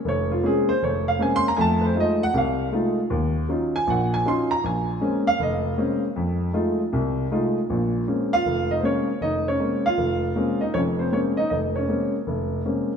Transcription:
0.05 0.38 F1 medium
0.05 0.31 C#5 medium
0.31 0.43 F4 medium
0.43 0.70 G#3 medium
0.43 0.70 A#3 soft
0.43 0.70 C4 medium
0.43 0.70 C#4 medium
0.43 0.69 G#4 medium
0.69 0.81 C5 medium
0.82 1.15 F1 medium
0.82 1.07 C#5 medium
1.08 1.20 F5 medium
1.19 1.46 G#3 medium
1.19 1.46 A#3 medium
1.19 1.46 C4 medium
1.19 1.46 C#4 medium
1.19 1.33 G#5 medium
1.36 1.46 C6 loud
1.48 1.59 A#5 medium
1.57 1.91 F2 medium
1.57 1.91 A3 medium
1.57 1.59 G#5 medium
1.61 1.84 A5 loud
1.80 1.82 B4 medium
1.85 1.96 C5 medium
1.95 2.22 G#3 medium
1.95 2.22 A3 medium
1.95 2.22 D#4 soft
1.95 2.22 F4 medium
2.00 2.22 D#5 medium
2.23 2.35 F#5 loud
2.34 2.67 C2 medium
2.34 2.67 C3 medium
2.34 2.71 F5 medium
2.72 2.98 G#3 medium
2.72 2.99 A3 medium
2.72 2.99 D#4 medium
2.72 2.99 F4 medium
3.10 3.43 D#2 medium
3.49 3.75 F#3 medium
3.49 3.75 C#4 soft
3.49 3.75 D#4 medium
3.49 3.75 F4 medium
3.76 3.87 G#5 loud
3.87 4.20 A#1 medium
3.87 4.20 A#2 medium
3.87 4.13 F#5 medium
4.14 4.25 G#5 medium
4.25 4.51 F#3 medium
4.25 4.51 C#4 medium
4.25 4.52 D#4 medium
4.25 4.52 F4 medium
4.25 4.51 C6 medium
4.51 4.63 A#5 medium
4.64 4.96 A#1 medium
4.64 5.23 G#5 medium
5.01 5.27 G#3 medium
5.01 5.27 A#3 soft
5.01 5.28 C4 soft
5.01 5.28 C#4 medium
5.27 5.39 F5 loud
5.40 5.72 F1 medium
5.40 6.00 D#5 medium
5.77 6.04 G#3 medium
5.77 6.04 A#3 soft
5.77 6.04 C4 medium
5.77 6.04 C#4 medium
6.16 6.49 F2 medium
6.53 6.80 G#3 medium
6.53 6.80 A3 medium
6.53 6.80 D#4 medium
6.53 6.80 F4 medium
6.93 7.25 C2 medium
6.93 7.25 C3 medium
7.31 7.57 G#3 medium
7.31 7.57 A3 soft
7.31 7.57 D#4 medium
7.31 7.57 F4 medium
7.70 8.02 A#1 medium
7.70 8.02 A#2 medium
8.08 8.33 G#3 soft
8.08 8.33 A#3 soft
8.08 8.33 C4 soft
8.08 8.33 C#4 soft
8.33 8.68 F4 medium
8.33 8.71 F5 loud
8.46 8.78 F1 medium
8.71 8.78 D#4 medium
8.71 8.78 D#5 medium
8.77 8.82 C5 medium
8.83 9.09 G#3 medium
8.83 9.09 A#3 soft
8.83 9.09 C4 soft
8.83 9.09 C#4 medium
8.83 9.23 C#5 medium
9.21 9.54 F1 medium
9.21 9.45 D#4 medium
9.21 9.45 D#5 medium
9.48 9.59 C#4 medium
9.48 9.86 C#5 medium
9.60 9.86 G#3 medium
9.60 9.86 A#3 soft
9.60 9.86 C4 soft
9.60 9.86 C#4 medium
9.86 10.58 F4 medium
9.86 10.64 F5 medium
9.98 10.30 F1 medium
10.36 10.62 G#3 medium
10.36 10.62 A#3 soft
10.36 10.62 C4 soft
10.36 10.62 C#4 medium
10.61 10.74 D#4 medium
10.61 10.74 D#5 medium
10.74 11.07 F1 medium
10.74 11.07 F2 medium
10.74 10.81 C#4 medium
10.74 10.79 C#5 medium
10.99 11.11 C4 medium
10.99 11.11 C5 medium
11.12 11.38 G#3 medium
11.12 11.38 A#3 soft
11.12 11.39 C4 soft
11.12 11.39 C#4 medium
11.12 11.19 C#5 medium
11.37 11.50 D#4 medium
11.37 11.49 D#5 medium
11.50 11.84 F1 medium
11.50 11.58 D#4 medium
11.50 11.56 D#5 medium
11.76 11.88 C#4 medium
11.76 12.11 C#5 medium
11.88 12.15 G#3 medium
11.88 12.15 A#3 soft
11.88 12.15 C4 soft
11.88 12.15 C#4 medium
12.27 12.60 F1 medium
12.65 12.92 G#3 soft
12.65 12.92 A#3 soft
12.65 12.92 C4 soft
12.65 12.92 C#4 medium

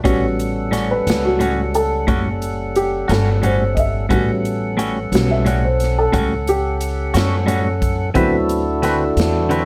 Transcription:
0.04 1.04 A1 medium
0.04 0.25 A2 medium
0.04 1.02 G3 soft
0.04 0.25 G3 medium
0.04 4.06 G3 medium
0.04 1.02 B3 soft
0.04 1.02 C#4 soft
0.04 0.25 C#4 medium
0.04 4.06 C#4 medium
0.04 0.26 F#4 medium
0.04 1.03 F#4 soft
0.04 4.06 A4 medium
0.04 4.06 F#5 medium
0.04 kick loud
0.04 closed hi-hat medium
0.39 closed hi-hat medium
0.71 0.92 A2 medium
0.71 0.93 G3 medium
0.71 0.93 C#4 medium
0.71 0.93 F#4 medium
0.71 closed hi-hat medium
0.76 snare soft
0.91 1.23 B4 medium
1.07 2.05 C#2 medium
1.07 snare loud
1.07 closed hi-hat medium
1.25 1.73 F#4 medium
1.39 1.60 A2 medium
1.39 1.60 G3 medium
1.39 1.61 C#4 medium
1.39 1.61 F#4 medium
1.39 closed hi-hat medium
1.74 2.40 A4 medium
1.74 closed hi-hat medium
2.07 3.06 F#1 medium
2.07 2.28 A2 medium
2.07 2.28 G3 medium
2.07 2.28 C#4 medium
2.07 2.29 F#4 medium
2.07 kick medium
2.07 closed hi-hat medium
2.42 closed hi-hat medium
2.76 3.08 G4 medium
2.76 closed hi-hat medium
3.08 4.07 G1 medium
3.08 3.30 G3 soft
3.08 3.29 C#4 soft
3.08 3.29 F#4 medium
3.08 3.42 A4 medium
3.08 closed hi-hat medium
3.12 snare loud
3.42 3.63 A2 medium
3.42 3.63 G3 medium
3.42 3.63 C#4 medium
3.42 3.64 F#4 medium
3.42 3.77 C5 medium
3.42 closed hi-hat medium
3.75 3.78 D#5 soft
3.75 kick medium
3.75 closed hi-hat medium
3.79 5.25 E5 medium
4.09 5.09 A1 medium
4.09 4.30 A2 medium
4.09 4.30 G3 medium
4.09 5.08 G3 soft
4.09 5.08 B3 soft
4.09 8.10 C#4 medium
4.09 4.31 C#4 medium
4.09 5.08 C#4 soft
4.09 4.31 F#4 medium
4.09 5.08 F#4 soft
4.09 8.10 A4 medium
4.09 8.10 F#5 medium
4.09 kick medium
4.09 closed hi-hat medium
4.45 closed hi-hat medium
4.77 4.97 A2 medium
4.77 4.98 G3 medium
4.77 4.98 C#4 medium
4.77 4.98 F#4 medium
4.77 closed hi-hat medium
5.12 6.10 B1 medium
5.12 5.42 G3 soft
5.12 5.42 B3 soft
5.12 5.42 C#4 soft
5.12 5.42 F#4 soft
5.12 snare loud
5.12 closed hi-hat medium
5.31 5.62 E5 medium
5.45 5.65 A2 medium
5.45 5.66 G3 medium
5.45 5.66 C#4 medium
5.45 5.66 F#4 medium
5.45 closed hi-hat medium
5.65 5.96 C5 medium
5.80 snare soft
5.80 closed hi-hat medium
5.99 6.46 A4 medium
6.12 7.11 C#2 medium
6.12 6.33 A2 medium
6.12 6.33 G3 medium
6.12 6.33 C#4 medium
6.12 6.33 F#4 medium
6.12 kick medium
6.12 closed hi-hat medium
6.47 7.13 G4 medium
6.47 closed hi-hat medium
6.81 closed hi-hat medium
7.14 8.12 F#2 medium
7.14 7.35 G3 soft
7.14 7.35 C#4 soft
7.14 7.34 F#4 soft
7.14 snare loud
7.14 closed hi-hat medium
7.46 7.67 A2 medium
7.46 7.67 G3 medium
7.46 7.68 C#4 medium
7.46 7.68 F#4 medium
7.46 closed hi-hat medium
7.82 kick medium
7.82 closed hi-hat medium
8.14 9.14 D2 medium
8.14 8.35 D3 medium
8.14 8.60 F#3 soft
8.14 8.60 B3 soft
8.14 8.35 C4 medium
8.14 8.60 C4 soft
8.14 9.65 D4 medium
8.14 9.65 E4 medium
8.14 8.60 E4 soft
8.14 8.35 F#4 medium
8.14 9.65 F#4 medium
8.14 9.65 A4 medium
8.14 8.36 B4 medium
8.14 kick medium
8.14 closed hi-hat medium
8.49 closed hi-hat medium
8.82 9.03 D3 medium
8.82 9.03 C4 medium
8.82 9.03 F#4 medium
8.82 9.04 B4 medium
8.82 snare soft
8.82 closed hi-hat medium
9.17 9.65 E2 medium
9.17 snare loud
9.17 closed hi-hat medium
9.49 9.65 D3 medium
9.49 9.65 C4 medium
9.49 9.65 F#4 medium
9.49 9.65 B4 medium
9.49 closed hi-hat medium

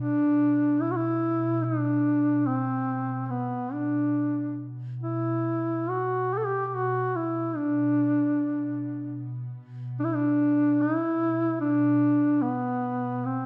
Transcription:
0.00 5.03 B2 soft
0.00 0.83 D4 loud
0.81 0.93 E4 medium
0.91 0.98 F#4 medium
0.96 1.66 E4 loud
1.64 2.48 D4 loud
2.47 3.26 C4 medium
3.26 3.74 B3 medium
3.26 3.32 C4 medium
3.73 4.60 D4 medium
5.03 13.46 B2 soft
5.03 5.91 E4 medium
5.90 6.35 F#4 medium
6.33 6.39 G4 medium
6.33 6.47 A4 medium
6.46 6.66 G4 medium
6.66 6.77 G4 medium
6.75 7.17 F#4 loud
7.16 7.58 E4 medium
7.56 9.19 D4 medium
10.00 10.06 D4 loud
10.04 10.16 E4 medium
10.15 10.83 D4 loud
10.81 11.60 E4 loud
11.61 12.44 D4 loud
12.42 13.27 B3 medium
13.25 13.46 C4 medium

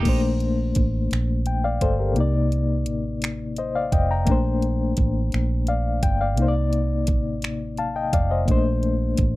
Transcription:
0.00 2.11 A#3 medium
0.00 0.21 D#4 medium
0.00 0.21 G4 medium
0.05 0.72 A#1 medium
0.05 2.12 A3 medium
0.05 2.13 D4 medium
0.05 kick loud
0.05 closed hi-hat medium
0.05 crash medium
0.09 1.10 C5 medium
0.40 closed hi-hat soft
0.75 1.08 A1 medium
0.75 kick medium
0.75 closed hi-hat medium
1.11 1.78 A#1 medium
1.11 finger snap medium
1.11 closed hi-hat medium
1.46 1.63 G5 medium
1.46 closed hi-hat medium
1.64 1.81 D5 medium
1.64 1.81 F5 medium
1.81 2.18 G1 medium
1.81 1.98 A4 soft
1.81 1.98 C5 medium
1.81 kick medium
1.81 closed hi-hat medium
1.99 2.33 G4 soft
1.99 2.32 A#4 soft
2.14 4.21 C3 medium
2.14 4.23 A#3 medium
2.14 closed hi-hat medium
2.18 2.88 C2 medium
2.18 4.24 D#4 medium
2.18 3.56 D5 medium
2.52 closed hi-hat soft
2.86 3.88 A1 medium
2.86 closed hi-hat medium
3.22 finger snap medium
3.22 closed hi-hat medium
3.56 3.74 C5 soft
3.56 3.74 D#5 medium
3.56 closed hi-hat medium
3.75 3.92 D5 medium
3.75 3.91 F5 medium
3.92 4.24 F1 medium
3.92 4.09 D#5 medium
3.92 4.09 G5 medium
3.92 kick medium
3.92 closed hi-hat medium
4.11 4.44 G5 soft
4.11 4.43 A#5 medium
4.26 4.93 A#1 medium
4.26 6.33 A3 medium
4.26 6.33 A#3 medium
4.26 6.35 D4 medium
4.26 kick medium
4.26 closed hi-hat medium
4.31 6.36 C5 medium
4.62 closed hi-hat soft
4.97 5.29 A1 medium
4.97 kick medium
4.97 closed hi-hat medium
5.32 5.99 A#1 medium
5.32 finger snap medium
5.32 closed hi-hat medium
5.67 6.01 D5 soft
5.67 6.01 F5 medium
5.67 closed hi-hat medium
6.03 6.39 G1 medium
6.03 6.19 G5 medium
6.03 kick medium
6.03 closed hi-hat medium
6.21 6.47 D5 soft
6.21 6.54 F5 medium
6.36 7.09 C2 medium
6.36 8.43 C3 medium
6.36 8.44 A#3 medium
6.36 8.45 D#4 medium
6.36 closed hi-hat medium
6.42 6.46 C5 medium
6.48 7.46 D5 medium
6.73 closed hi-hat soft
7.07 8.09 A1 medium
7.07 kick medium
7.07 closed hi-hat medium
7.42 finger snap medium
7.42 closed hi-hat medium
7.77 7.95 F5 soft
7.77 7.95 A5 medium
7.77 closed hi-hat medium
7.96 8.12 D#5 soft
7.96 8.12 G5 medium
8.13 8.45 F1 medium
8.13 8.30 D5 medium
8.13 8.30 F5 medium
8.13 kick medium
8.13 closed hi-hat medium
8.31 8.50 C5 soft
8.31 8.64 D#5 soft
8.45 9.14 A#1 medium
8.45 9.36 A3 medium
8.45 9.36 A#3 medium
8.45 kick loud
8.45 closed hi-hat medium
8.50 9.36 D4 medium
8.50 9.36 C5 medium
8.83 closed hi-hat soft
9.17 9.36 A1 medium
9.17 kick medium
9.17 closed hi-hat medium

